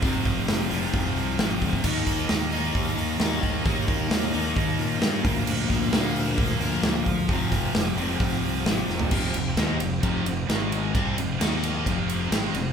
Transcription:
<<
  \new Staff \with { instrumentName = "Tonewheel organ" } { \time 4/4 \key f \dorian \tempo 4 = 132 <f' c'' g''>1 | <ees' bes' f''>1~ | <ees' bes' f''>2.~ <ees' bes' f''>8 <bes f' c''>8~ | <bes f' c''>1 |
<f c' g'>1 | <f c' g'>2. <aes ees' bes'>4 | <f' c'' g''>4 <ees' bes' f''>4 <f' c'' g''>2 | }
  \new Staff \with { instrumentName = "Distorted electric guitar" } { \clef bass \time 4/4 \key f \dorian <f, c f>4. <f, c f>2~ <f, c f>8 | <ees bes ees'>4. <ees bes ees'>2~ <ees bes ees'>8 | <ees bes ees'>4. <ees bes ees'>2 <bes, f bes>8~ | <bes, f bes>4 <bes, f bes>2~ <bes, f bes>8 r8 |
<f, c f>4. <f, c f>2~ <f, c f>8 | <f, c f>8 <f, c>8 <ees bes ees'>8 <f, c>8 <f, c f>8 <f, c>8 <aes, ees aes>4 | <c g c'>8 <f, c>8 <ees bes ees'>4 <f, c f>4 <aes, ees aes>8 <f, c>8 | }
  \new Staff \with { instrumentName = "Overdriven electric guitar" } { \clef bass \time 4/4 \key f \dorian <f, c f>4. <f, c f>4. <f, c f>4 | <ees bes ees'>4. <ees bes ees'>4. <ees bes ees'>4 | <ees bes ees'>4. <ees bes ees'>4. <ees bes ees'>8 <bes, f bes>8~ | <bes, f bes>4 <bes, f bes>4. <bes, f bes>4 r8 |
<f, c f>4. <f, c f>4. <f, c f>4 | <f, c f>8 <f, c>8 <ees bes ees'>8 <f, c>8 <f, c f>8 <f, c>8 <aes, ees aes>4 | <c g c'>8 <f, c>8 <ees bes ees'>4 <f, c f>4 <aes, ees aes>8 <f, c>8 | }
  \new Staff \with { instrumentName = "Fingered electric bass" } { \clef bass \time 4/4 \key f \dorian f,,8 f,,8 f,,8 f,,8 f,,8 c,8 aes,,8 d,8 | ees,8 ees,8 ees,4 ees,8 ees,8 ees,8 ees,8 | ees,8 ees,8 ees,8 ees,8 ees,8 bes,8 g,8 d,8 | d,8 d,8 d,4 d,8 d,8 d,8 d,8 |
f,,8 f,,8 f,,8 f,,8 f,,8 c,8 aes,,8 f,,8 | f,,8 f,,8 ees,8 f,,8 f,,8 f,,8 aes,,4 | c,8 f,,8 ees,4 f,,4 aes,,8 f,,8 | }
  \new DrumStaff \with { instrumentName = "Drums" } \drummode { \time 4/4 <hho bd>8 <hho bd sn>8 <hho sn>8 hho8 <hho bd>16 sn16 hho8 <hho sn>8 <hho bd>16 bd16 | <cymc bd>8 <hho bd sn>8 <hho sn>8 hho8 <hho bd>16 sn16 hho8 <hho sn>8 <hho bd>8 | <hho bd>8 <hho bd>8 <hho sn>8 hho8 <hho bd>8 hho8 <hho sn>8 <hho bd>8 | cymc8 <hho bd sn>8 <hho sn>8 hho8 <hho bd>16 sn16 hho8 <hho sn>8 <hho bd>8 |
<hho bd>8 <hho bd sn>8 <hho sn>8 hho8 <hho bd>16 sn16 hho8 <hho sn>8 sn16 tomfh16 | <cymc bd>8 cymr8 <cymr sn>8 cymr8 <bd cymr>8 cymr8 <cymr sn>8 cymr8 | <bd cymr>8 cymr8 <cymr sn>8 cymr8 <bd cymr>8 cymr8 <cymr sn>8 cymr8 | }
>>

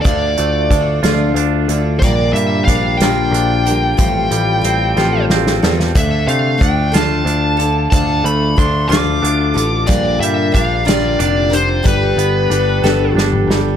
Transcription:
<<
  \new Staff \with { instrumentName = "Lead electric guitar" } { \time 6/8 \key d \dorian \tempo 4. = 61 d''2 r4 | d''8 e''8 f''8 g''4. | g''2 r4 | e''8 f''8 g''8 a''4. |
a''8 b''8 c'''8 d'''4. | d''8 e''8 f''8 d''8 d''8 c''8 | b'2 r4 | }
  \new Staff \with { instrumentName = "Twelve-string acoustic guitar" } { \time 6/8 \key d \dorian <d a d' f' a'>4 <a d' f' a'>8 <d a d' f' a'>4 <d' f' a'>8 | <bes, d g d' f' bes'>4 <g d' f' bes'>8 <bes, d g d' f' bes'>4 <g d' f' bes'>8 | <a, f g c' f' a'>4 <g c' f' a'>8 <a, f g c' f' a'>4 <g c' f' a'>8 | <d a d' f' a'>4 <a d' f' a'>8 <d a d' f' a'>4 <d' f' a'>8 |
<d a d' f' a'>4 <a d' f' a'>8 <d a d' f' a'>4 <d' f' a'>8 | <bes, d g d' f' bes'>4 <g d' f' bes'>8 <bes, d g d' f' bes'>4 <g d' f' bes'>8 | <g b d' g' a'>4 <b d' g' a'>8 <g b d' g' a'>4 <d' g' a'>8 | }
  \new Staff \with { instrumentName = "Clean electric guitar" } { \time 6/8 \key d \dorian <d d' f'>8 a8 d'8 f'8 d'8 d8 | bes,8 g8 d'8 f'8 d'8 d8 | a,8 g8 c'8 f'8 c'8 f8 | d8 a8 d'8 f'8 d'8 d8 |
d8 a8 d'8 f'8 d'8 d8 | bes,8 g8 d'8 f'8 d'8 d8 | g8 b8 d'8 a'8 d'8 g8 | }
  \new Staff \with { instrumentName = "Picked electric bass" } { \clef bass \time 6/8 \key d \dorian d,8 d,8 d,8 d,8 d,8 d,8 | bes,,8 g,8 bes,,4 bes,,4 | a,,8 a,,8 a,,8 a,,8 a,,8 e,8 | d,8 c8 d,4 d,4 |
d,8 d,8 d,8 d,8 d,8 a,,8 | bes,,8 g,8 bes,,4 f,,4 | g,,8 g,,8 g,,8 g,,8 g,,8 g,,8 | }
  \new DrumStaff \with { instrumentName = "Drums" } \drummode { \time 6/8 <hh bd>8 hh8 <hh bd>8 <hh sn>8 hh8 hh8 | <hh bd>8 hh8 <hh bd>8 <hh sn>8 hh8 hh8 | <hh bd>8 hh8 hh8 sn8 sn16 sn16 sn16 sn16 | <hh bd>8 hh8 <hh bd>8 <hh sn>8 hh8 hh8 |
<hh bd>8 hh8 <hh bd>8 <hh sn>8 hh8 hh8 | <hh bd>8 hh8 <hh bd>8 <hh sn>8 hh8 hh8 | <hh bd>8 hh8 hh8 sn8 sn16 toml16 sn8 | }
>>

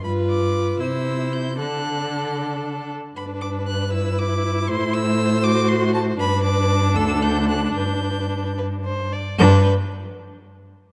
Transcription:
<<
  \new Staff \with { instrumentName = "Violin" } { \time 6/8 \key g \major \tempo 4. = 77 b''8 d'''4 e'''4 g'''8 | fis'''2~ fis'''8 r8 | b''8 d'''8 fis'''8 e'''8 d'''4 | c'''8 e'''4 d'''8 c'''8 a''8 |
b''8 d'''4 e'''8 g'''8 fis'''8 | g'''4. r4. | g'''8 r2 r8 | }
  \new Staff \with { instrumentName = "Violin" } { \time 6/8 \key g \major b'4. c''4. | a'2~ a'8 r8 | b'2. | c''2. |
b'4. a'4. | b'4. b'8 c''8 d''8 | b'8 r2 r8 | }
  \new Staff \with { instrumentName = "Viola" } { \time 6/8 \key g \major f'4. e'4. | d'2~ d'8 r8 | d'4. e'4.~ | e'4. fis'4. |
d'2.~ | d'2~ d'8 r8 | d'8 r2 r8 | }
  \new Staff \with { instrumentName = "Cello" } { \clef bass \time 6/8 \key g \major g,4. c4. | d2~ d8 r8 | g,2. | a,2. |
g,4. d,4. | g,2~ g,8 r8 | g,8 r2 r8 | }
>>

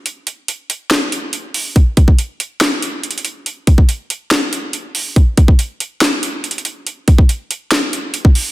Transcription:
\new DrumStaff \with { instrumentName = "Drums" } \drummode { \time 4/4 \tempo 4 = 141 hh8 hh8 hh8 hh8 <hc hh sn>8 hh8 hh8 hho8 | <hh bd>8 <hh bd>16 bd16 hh8 hh8 <hc hh sn>8 hh8 \tuplet 3/2 { hh16 hh16 hh16 hh16 r16 r16 } | hh8 <hh bd>16 bd16 hh8 hh8 <hc hh sn>8 hh8 hh8 hho8 | <hh bd>8 <hh bd>16 bd16 hh8 hh8 <hc hh sn>8 hh8 \tuplet 3/2 { hh16 hh16 hh16 hh16 r16 r16 } |
hh8 <hh bd>16 bd16 hh8 hh8 <hc hh sn>8 hh8 hh16 bd16 hho8 | }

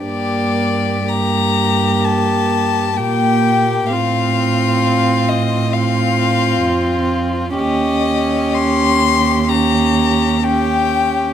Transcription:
<<
  \new Staff \with { instrumentName = "Violin" } { \time 4/4 \key g \minor \tempo 4 = 64 d''4 bes''4 a''4 g''4 | f''4. ees''8 f''4. r8 | ees''4 c'''4 bes''4 g''4 | }
  \new Staff \with { instrumentName = "Violin" } { \time 4/4 \key g \minor g'4 g'2 g'4 | f'2 f'2 | g'2 g'4 g'4 | }
  \new Staff \with { instrumentName = "Viola" } { \time 4/4 \key g \minor bes4 bes2 bes4 | c'2 c'2 | des'2 des'4 des'4 | }
  \new Staff \with { instrumentName = "Cello" } { \clef bass \time 4/4 \key g \minor g,2. bes,4 | a,2. f,4 | ees,1 | }
>>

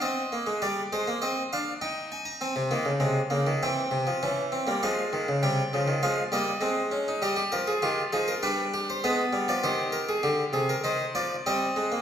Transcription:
<<
  \new Staff \with { instrumentName = "Harpsichord" } { \time 4/4 \key c \phrygian \tempo 4 = 100 << { ees''4 d''8 c''8 ees''8 f''8 g''8 aes''16 bes''16 | aes''2 g''2 | f''4 g''4 f''8 ees''4. | ees''16 g'16 bes'16 aes'16 g'8 aes'16 bes'16 b'8 g'16 c''16 b'8. d''16 |
c''8 bes'16 aes'16 g'8 aes'16 bes'16 c''8 d''8 ees''4 | } \\ { c'8 bes16 aes16 g8 aes16 bes16 c'8 d'8 ees'4 | c'8 bes8 aes8 bes8 c'4 des'8 c'16 bes16 | aes4 g8 f8 aes8 bes8 c'8 des'16 ees'16 | g'4 f'8 ees'8 d'4 b4 |
g'2 ees'4 c'4 | } >> }
  \new Staff \with { instrumentName = "Harpsichord" } { \clef bass \time 4/4 \key c \phrygian r1 | r16 c16 ees16 des16 c8 des16 ees16 e8 c16 f16 e8. g16 | f8 ees16 des16 c8 des16 ees16 f8 g8 aes4 | g8 f8 ees8 f8 g4 aes8 g16 f16 |
ees4 d8 c8 ees8 f8 g8 aes16 bes16 | }
>>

